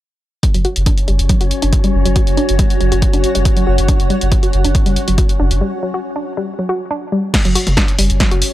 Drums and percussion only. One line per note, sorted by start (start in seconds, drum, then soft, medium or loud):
0.43 kick loud
0.43 closed hi-hat medium
0.54 closed hi-hat medium
0.65 closed hi-hat soft
0.76 closed hi-hat medium
0.86 kick loud
0.86 closed hi-hat medium
0.98 closed hi-hat medium
1.08 closed hi-hat soft
1.19 closed hi-hat medium
1.29 kick loud
1.29 closed hi-hat medium
1.41 closed hi-hat medium
1.51 closed hi-hat medium
1.62 closed hi-hat medium
1.73 kick loud
1.73 closed hi-hat medium
1.84 closed hi-hat medium
2.06 closed hi-hat medium
2.16 kick loud
2.16 closed hi-hat medium
2.27 closed hi-hat medium
2.37 closed hi-hat soft
2.49 closed hi-hat medium
2.59 kick loud
2.59 closed hi-hat medium
2.70 closed hi-hat medium
2.81 closed hi-hat soft
2.92 closed hi-hat medium
3.02 kick loud
3.02 closed hi-hat medium
3.13 closed hi-hat medium
3.24 closed hi-hat medium
3.35 closed hi-hat medium
3.45 kick loud
3.45 closed hi-hat medium
3.57 closed hi-hat medium
3.78 closed hi-hat medium
3.88 kick loud
3.88 closed hi-hat medium
4.00 closed hi-hat medium
4.10 closed hi-hat soft
4.21 closed hi-hat soft
4.32 kick loud
4.32 closed hi-hat medium
4.43 closed hi-hat medium
4.53 closed hi-hat soft
4.65 closed hi-hat medium
4.75 kick loud
4.75 closed hi-hat medium
4.86 closed hi-hat medium
4.96 closed hi-hat medium
5.08 closed hi-hat medium
5.18 kick loud
5.18 closed hi-hat medium
5.29 closed hi-hat medium
5.51 closed hi-hat soft
7.34 kick loud
7.34 snare loud
7.34 closed hi-hat medium
7.34 crash loud
7.45 closed hi-hat medium
7.55 open hi-hat loud
7.67 closed hi-hat medium
7.67 mid tom medium
7.77 kick loud
7.77 snare loud
7.77 closed hi-hat medium
7.88 closed hi-hat medium
7.99 open hi-hat loud
8.10 closed hi-hat medium
8.20 kick loud
8.20 snare loud
8.20 closed hi-hat medium
8.31 closed hi-hat medium
8.42 open hi-hat loud